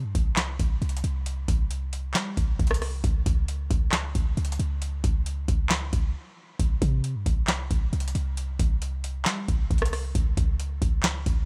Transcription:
0.04 0.15 G2 loud
0.15 0.58 C2 loud
0.15 kick loud
0.15 closed hi-hat medium
0.36 snare loud
0.36 clap medium
0.36 closed hi-hat medium
0.59 0.81 C2 loud
0.59 kick loud
0.59 closed hi-hat medium
0.82 1.03 C2 loud
0.82 closed hi-hat soft
0.89 closed hi-hat medium
0.97 closed hi-hat medium
1.04 1.47 C2 loud
1.04 closed hi-hat medium
1.26 closed hi-hat medium
1.48 2.17 C2 loud
1.48 kick loud
1.48 closed hi-hat medium
1.71 closed hi-hat medium
1.93 closed hi-hat medium
2.14 2.36 G3 loud
2.14 snare loud
2.14 clap medium
2.14 closed hi-hat medium
2.37 2.59 C2 loud
2.37 kick loud
2.37 closed hi-hat medium
2.59 3.02 C2 loud
2.59 kick loud
2.59 closed hi-hat medium
2.67 cross-stick medium
2.67 closed hi-hat medium
2.74 closed hi-hat medium
2.82 cross-stick medium
2.82 open hi-hat medium
3.04 3.25 C#2 loud
3.04 kick loud
3.04 closed hi-hat medium
3.26 3.69 C#2 loud
3.26 kick loud
3.26 closed hi-hat medium
3.48 closed hi-hat medium
3.71 4.13 C#2 loud
3.71 kick medium
3.71 closed hi-hat medium
3.92 snare loud
3.92 clap medium
3.92 closed hi-hat medium
4.15 4.36 C#2 loud
4.15 kick loud
4.15 closed hi-hat medium
4.37 4.59 C#2 loud
4.37 closed hi-hat medium
4.45 closed hi-hat medium
4.52 closed hi-hat medium
4.59 5.02 C#2 loud
4.59 closed hi-hat medium
4.82 closed hi-hat medium
5.04 5.47 C#2 loud
5.04 kick loud
5.04 closed hi-hat medium
5.26 closed hi-hat medium
5.48 5.91 C#2 loud
5.48 kick loud
5.48 closed hi-hat medium
5.70 snare loud
5.70 clap medium
5.70 closed hi-hat medium
5.93 6.14 C#2 loud
5.93 kick loud
5.93 closed hi-hat medium
6.59 6.81 C2 loud
6.59 kick loud
6.59 closed hi-hat medium
6.82 7.17 C3 loud
6.82 kick loud
6.82 closed hi-hat medium
7.04 closed hi-hat medium
7.15 7.26 G2 loud
7.26 7.69 C2 loud
7.26 kick loud
7.26 closed hi-hat medium
7.48 snare loud
7.48 clap medium
7.48 closed hi-hat medium
7.71 7.92 C2 loud
7.71 kick loud
7.71 closed hi-hat medium
7.93 8.14 C2 loud
7.93 closed hi-hat medium
8.00 closed hi-hat medium
8.08 closed hi-hat medium
8.15 8.58 C2 loud
8.15 closed hi-hat medium
8.37 closed hi-hat medium
8.59 9.28 C2 loud
8.59 kick loud
8.59 closed hi-hat medium
8.82 closed hi-hat medium
9.04 closed hi-hat medium
9.25 9.47 G3 loud
9.25 snare loud
9.25 clap loud
9.25 closed hi-hat medium
9.48 9.70 C2 loud
9.48 kick loud
9.48 closed hi-hat medium
9.71 10.13 C2 loud
9.71 kick loud
9.71 closed hi-hat medium
9.78 cross-stick medium
9.78 closed hi-hat medium
9.85 closed hi-hat medium
9.93 cross-stick medium
9.93 open hi-hat medium
10.15 10.36 C#2 loud
10.15 kick loud
10.15 closed hi-hat medium
10.37 10.80 C#2 loud
10.37 kick loud
10.37 closed hi-hat medium
10.60 closed hi-hat medium
10.82 11.24 C#2 loud
10.82 kick medium
10.82 closed hi-hat medium
11.03 snare loud
11.03 clap medium
11.03 closed hi-hat medium
11.26 11.45 C#2 loud
11.26 kick loud
11.26 closed hi-hat medium

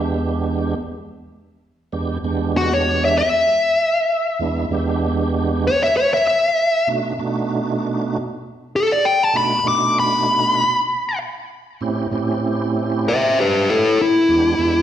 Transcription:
0.00 0.74 E2 medium
0.00 0.75 G#3 medium
0.00 0.75 B3 medium
0.00 0.75 D4 medium
0.00 0.75 G4 medium
1.92 2.18 E2 medium
1.92 2.18 G#3 medium
1.92 2.18 B3 medium
1.92 2.19 D4 medium
1.92 2.19 G4 medium
2.24 3.23 E2 medium
2.24 3.23 G#3 medium
2.24 3.23 B3 medium
2.24 3.23 D4 medium
2.24 3.23 G4 medium
2.57 2.73 F#4 medium
2.73 3.03 C#5 medium
3.05 3.17 E5 medium
3.18 4.38 E5 medium
4.39 4.65 E2 medium
4.39 4.66 G#3 medium
4.39 4.66 B3 medium
4.39 4.66 D4 medium
4.39 4.66 E4 medium
4.71 5.70 E2 medium
4.71 5.70 G#3 medium
4.71 5.70 B3 medium
4.71 5.70 D4 medium
4.71 5.70 G4 loud
5.67 5.82 C#5 loud
5.83 5.96 E5 medium
5.97 6.12 C#5 medium
6.14 6.26 E5 medium
6.27 6.87 E5 medium
6.87 7.13 B2 medium
6.87 7.13 A3 medium
6.87 7.13 D4 medium
6.87 7.13 D#4 medium
6.87 7.14 F#4 medium
7.19 8.18 B2 medium
7.19 8.18 A3 medium
7.19 8.18 D4 medium
7.19 8.18 D#4 medium
7.19 8.18 F#4 medium
8.76 8.91 A4 medium
8.92 9.05 D5 medium
9.05 9.23 G5 medium
9.23 9.36 A5 medium
9.33 9.60 B2 medium
9.33 9.60 A3 medium
9.33 9.60 D4 medium
9.33 9.60 D#4 medium
9.33 9.61 F#4 medium
9.33 9.66 B5 medium
9.64 10.64 B2 medium
9.64 10.64 A3 medium
9.64 10.64 D4 medium
9.64 10.64 D#4 medium
9.64 10.65 F#4 medium
9.68 9.97 D6 medium
10.00 11.19 B5 loud
11.81 12.07 A2 medium
11.81 12.07 C4 medium
11.81 12.07 C#4 medium
11.81 12.07 E4 medium
11.81 12.08 G4 loud
12.11 13.11 A2 medium
12.11 13.11 C4 medium
12.11 13.12 C#4 medium
12.11 13.12 E4 medium
12.11 13.12 G4 loud
13.08 13.39 C5 medium
13.08 13.38 E5 medium
13.40 13.68 G4 medium
13.40 13.69 B4 medium
13.69 13.98 E4 medium
13.69 13.99 A4 medium
14.02 14.82 E4 loud
14.29 14.55 E2 medium
14.29 14.55 G#3 medium
14.29 14.55 B3 medium
14.29 14.55 D4 medium
14.29 14.55 G4 medium
14.59 14.82 E2 medium
14.59 14.82 G#3 medium
14.59 14.82 B3 medium
14.59 14.82 D4 medium
14.59 14.82 G4 medium

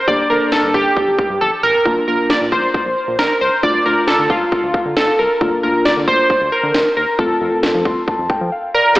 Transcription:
0.08 0.17 G1 loud
0.08 0.23 A#3 medium
0.08 0.23 D4 medium
0.08 0.23 G4 medium
0.08 0.31 D5 loud
0.08 kick loud
0.30 0.39 G1 medium
0.30 0.89 A#3 medium
0.30 0.89 D4 medium
0.30 0.89 A4 medium
0.30 0.51 A#4 medium
0.52 0.61 G1 loud
0.52 0.75 A4 medium
0.52 snare loud
0.63 0.73 G2 medium
0.74 0.84 G1 loud
0.74 1.43 G4 loud
0.74 kick loud
0.97 kick medium
1.08 1.17 G1 medium
1.19 kick loud
1.30 1.39 G2 loud
1.41 1.50 G1 loud
1.41 1.51 A4 loud
1.41 high tom medium
1.63 1.73 A1 medium
1.63 2.07 A#4 loud
1.63 mid tom medium
1.74 floor tom medium
1.85 1.95 A#1 loud
1.85 2.00 A#3 medium
1.85 2.00 D4 medium
1.85 2.00 F4 medium
1.85 kick loud
2.08 2.17 A#1 loud
2.08 2.67 A#3 medium
2.08 2.67 D4 medium
2.08 2.67 F4 medium
2.08 2.31 A#4 medium
2.30 2.39 A#1 loud
2.30 2.40 D5 medium
2.30 snare loud
2.41 2.50 A#2 loud
2.52 2.61 A#1 medium
2.52 3.21 C5 loud
2.52 kick medium
2.74 kick medium
2.86 2.95 A#1 loud
3.08 3.17 A#2 medium
3.19 3.28 A#1 loud
3.19 3.42 A#4 loud
3.19 snare loud
3.41 3.50 C2 medium
3.41 3.62 C5 medium
3.63 3.73 D2 loud
3.63 3.78 A3 medium
3.63 3.78 D4 medium
3.63 3.78 F4 medium
3.63 3.86 D5 loud
3.63 kick loud
3.85 3.95 D2 loud
3.85 4.45 A3 medium
3.85 4.45 D4 medium
3.85 4.45 F4 medium
3.85 4.08 A#4 medium
4.08 4.17 D2 loud
4.08 4.31 A4 medium
4.08 snare loud
4.19 4.28 D3 medium
4.30 4.39 D2 loud
4.30 4.99 F4 medium
4.30 kick loud
4.52 kick medium
4.63 4.73 D2 loud
4.74 kick medium
4.85 4.95 D3 medium
4.97 5.06 D2 loud
4.97 5.20 A4 medium
4.97 snare loud
5.19 5.28 C2 medium
5.19 5.60 A#4 medium
5.41 5.50 D2 loud
5.41 5.56 A#3 medium
5.41 5.56 D4 medium
5.41 5.56 F4 medium
5.41 kick loud
5.63 5.73 D2 medium
5.63 6.23 A#3 medium
5.63 6.23 D4 medium
5.63 6.23 F4 medium
5.63 5.86 A#4 medium
5.85 5.95 D2 loud
5.85 5.95 D5 medium
5.85 snare loud
5.97 6.06 D3 loud
6.08 6.17 D2 loud
6.08 6.49 C5 loud
6.08 kick loud
6.30 kick medium
6.41 6.50 D2 loud
6.52 6.96 A#4 loud
6.63 6.73 D3 loud
6.74 6.84 D2 loud
6.74 snare loud
6.97 7.06 D#2 loud
6.97 7.20 A#4 medium
7.19 7.28 F2 loud
7.19 7.34 A3 medium
7.19 7.34 C4 medium
7.19 7.34 F4 medium
7.19 8.48 A4 medium
7.19 kick loud
7.41 7.50 F2 loud
7.41 8.00 A3 medium
7.41 8.00 C4 medium
7.41 8.00 F4 medium
7.63 7.73 F2 loud
7.63 snare loud
7.74 7.84 F3 loud
7.85 7.95 F2 medium
7.85 8.06 C6 medium
7.85 kick loud
8.08 8.28 A5 medium
8.08 kick medium
8.19 8.28 F2 loud
8.30 8.51 G5 medium
8.30 kick medium
8.41 8.50 F3 medium
8.52 8.73 F5 medium
8.74 9.00 A#4 loud
8.74 8.95 D5 medium
8.97 9.00 D#2 loud
8.97 9.00 G3 medium
8.97 9.00 A#3 medium
8.97 9.00 D#4 medium
8.97 9.00 G4 medium
8.97 kick loud
8.97 crash medium

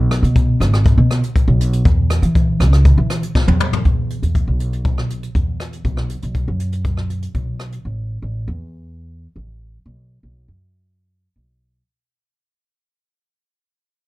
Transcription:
0.00 0.19 B1 loud
0.11 cross-stick medium
0.11 closed hi-hat medium
0.23 0.62 B2 medium
0.23 closed hi-hat medium
0.36 kick medium
0.36 closed hi-hat medium
0.60 0.94 G#1 medium
0.60 cross-stick medium
0.60 closed hi-hat medium
0.74 cross-stick medium
0.74 closed hi-hat medium
0.86 kick loud
0.86 closed hi-hat medium
0.98 1.20 B2 loud
1.11 cross-stick medium
1.11 closed hi-hat medium
1.23 closed hi-hat medium
1.36 kick medium
1.36 closed hi-hat medium
1.48 1.81 B1 loud
1.61 closed hi-hat medium
1.73 closed hi-hat medium
1.85 2.19 E2 loud
1.85 kick loud
1.85 closed hi-hat medium
2.10 cross-stick medium
2.10 closed hi-hat loud
2.22 2.61 E3 medium
2.22 closed hi-hat medium
2.35 kick loud
2.35 closed hi-hat medium
2.60 2.93 C#2 medium
2.60 cross-stick medium
2.60 closed hi-hat medium
2.73 cross-stick medium
2.73 closed hi-hat medium
2.85 kick loud
2.85 closed hi-hat medium
2.98 3.20 E3 loud
3.10 cross-stick medium
3.10 closed hi-hat medium
3.23 closed hi-hat medium
3.35 kick medium
3.35 snare medium
3.48 3.81 E2 medium
3.48 high tom medium
3.60 mid tom medium
3.73 floor tom medium
3.85 4.18 E2 medium
3.85 kick medium
3.85 closed hi-hat soft
4.10 closed hi-hat medium
4.23 4.45 E2 medium
4.23 closed hi-hat soft
4.35 kick medium
4.35 closed hi-hat medium
4.48 5.25 B1 medium
4.60 closed hi-hat medium
4.73 closed hi-hat soft
4.85 kick loud
4.85 closed hi-hat medium
4.98 cross-stick medium
5.10 closed hi-hat medium
5.23 closed hi-hat medium
5.35 5.79 E2 medium
5.35 kick medium
5.35 closed hi-hat medium
5.60 cross-stick medium
5.60 closed hi-hat medium
5.73 closed hi-hat medium
5.85 6.18 B1 medium
5.85 kick medium
5.85 closed hi-hat soft
5.97 cross-stick medium
6.10 closed hi-hat medium
6.22 6.45 B1 medium
6.22 closed hi-hat medium
6.35 kick medium
6.35 closed hi-hat medium
6.48 7.25 F#2 medium
6.60 closed hi-hat medium
6.72 closed hi-hat soft
6.85 kick loud
6.85 closed hi-hat medium
6.97 cross-stick medium
7.10 closed hi-hat medium
7.22 closed hi-hat medium
7.35 7.79 B1 medium
7.35 kick medium
7.35 closed hi-hat medium
7.60 cross-stick medium
7.60 closed hi-hat medium
7.72 closed hi-hat soft
7.85 8.18 A1 medium
8.22 8.45 A1 medium
8.48 9.25 E2 medium
9.36 9.80 A1 medium
9.86 10.19 B1 medium
10.23 10.45 B1 medium
10.48 11.26 F#2 medium
11.36 11.80 B1 medium

